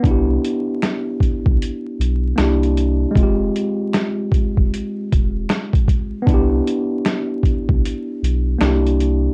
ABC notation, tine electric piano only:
X:1
M:4/4
L:1/8
Q:"Swing 16ths" 1/4=77
K:C
V:1 name="Tine electric piano"
[B,DEG]6 [_B,DEG]2 | [_A,CFG]8 | [B,DEG]6 [_B,DEG]2 |]